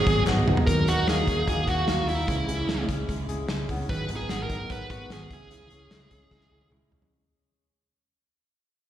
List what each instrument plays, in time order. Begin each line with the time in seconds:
Already playing: clean electric guitar F#3, lead electric guitar G#4
0.07 fingered electric bass G#1, steel-string acoustic guitar F#3 B3 D#4 G#4, kick, closed hi-hat
0.25 fingered electric bass G#1, steel-string acoustic guitar F#3 B3 D#4, snare, clap
0.30 steel-string acoustic guitar G#4
0.46 fingered electric bass C#2, steel-string acoustic guitar B3 D#4 G#4, mid tom
0.51 steel-string acoustic guitar F#3
0.57 floor tom
0.67 fingered electric bass D#2, steel-string acoustic guitar D#3 F#3 D#4 F#4 A#4, lead electric guitar A#4, kick, closed hi-hat
0.86 fingered electric bass D#2, steel-string acoustic guitar D#4 F#4 A#4, lead electric guitar F#4, closed hi-hat
1.06 fingered electric bass D#2, steel-string acoustic guitar D#3 F#3 D#4 F#4 A#4, clean electric guitar A#3, lead electric guitar G#4, snare, closed hi-hat
1.27 fingered electric bass D#2, clean electric guitar C#4, steel-string acoustic guitar D#4 F#4 A#4, kick, closed hi-hat
1.38 clean electric guitar D#4
1.46 fingered electric bass D#2, steel-string acoustic guitar F#3 D#4 F#4 A#4, clean electric guitar A#3, lead electric guitar G#4, kick, closed hi-hat
1.66 fingered electric bass D#2, steel-string acoustic guitar D#4 A#4, clean electric guitar F#4, lead electric guitar F#4, kick, closed hi-hat
1.87 fingered electric bass D#2, steel-string acoustic guitar D#3 F#3 D#4 F#4 A#4, clean electric guitar A#3, snare, closed hi-hat
2.07 fingered electric bass D#2, steel-string acoustic guitar D#4 F#4 A#4, lead electric guitar E4, open hi-hat
2.27 fingered electric bass C#2, steel-string acoustic guitar C#3 G#3 C#4 E4 G#4, clean electric guitar E3, kick, closed hi-hat
2.48 fingered electric bass C#2, steel-string acoustic guitar C#4 E4 G#4, closed hi-hat
2.67 fingered electric bass C#2, steel-string acoustic guitar C#3 G#3 C#4 E4 G#4, snare, closed hi-hat
2.87 fingered electric bass C#2, steel-string acoustic guitar C#4 E4 G#4, kick, snare, closed hi-hat
3.08 fingered electric bass C#2, steel-string acoustic guitar G#3 C#4 E4 G#4, kick, closed hi-hat
3.28 fingered electric bass C#2, steel-string acoustic guitar C#4 E4 G#4, closed hi-hat
3.48 fingered electric bass C#2, steel-string acoustic guitar C#3 G#3 C#4 E4 G#4, snare, closed hi-hat
3.69 fingered electric bass C#2, clean electric guitar B3, steel-string acoustic guitar C#4 E4 G#4, kick, open hi-hat
3.79 clean electric guitar C#4
3.89 fingered electric bass G#1, steel-string acoustic guitar G#2 D#3 F#3 B3 D#4 G#4, lead electric guitar B4, kick, closed hi-hat
4.08 fingered electric bass G#1, steel-string acoustic guitar F#3 B3 D#4 G#4, closed hi-hat
4.16 lead electric guitar G#4
4.29 fingered electric bass G#1, steel-string acoustic guitar G#2 D#3 F#3 B3 D#4 G#4, snare, closed hi-hat
4.43 lead electric guitar A#4
4.49 fingered electric bass G#1, steel-string acoustic guitar F#3 B3 D#4 G#4, kick, snare, closed hi-hat
4.69 fingered electric bass G#1, steel-string acoustic guitar F#3 B3 D#4 G#4, lead electric guitar B4, kick, closed hi-hat
4.90 fingered electric bass G#1, steel-string acoustic guitar F#3 B3 D#4 G#4, clean electric guitar F#4, lead electric guitar B4, kick, closed hi-hat
5.09 fingered electric bass G#1, steel-string acoustic guitar G#2 D#3 F#3 B3 D#4 G#4, snare, closed hi-hat
5.13 lead electric guitar G#4
5.30 fingered electric bass C#2, clean electric guitar E3, steel-string acoustic guitar C#4 E4 G#4, kick, closed hi-hat
5.34 lead electric guitar G#4
5.50 steel-string acoustic guitar C#3 G#3 C#4 E4 G#4, clean electric guitar E3, closed hi-hat
5.70 fingered electric bass C#2, steel-string acoustic guitar C#4 E4 G#4, closed hi-hat
5.91 fingered electric bass C#2, steel-string acoustic guitar C#3 G#3 C#4 E4 G#4, snare, closed hi-hat
6.10 fingered electric bass C#2, steel-string acoustic guitar C#4 E4 G#4, kick, closed hi-hat
6.30 fingered electric bass C#2, steel-string acoustic guitar G#3 C#4 E4 G#4, kick, snare
6.41 snare
6.50 fingered electric bass C#2, steel-string acoustic guitar C#4 E4 G#4
6.61 high tom
6.71 fingered electric bass C#2, steel-string acoustic guitar C#3 G#3 C#4 E4 G#4, mid tom
6.91 fingered electric bass C#2, steel-string acoustic guitar C#4 E4 G#4, floor tom
7.02 floor tom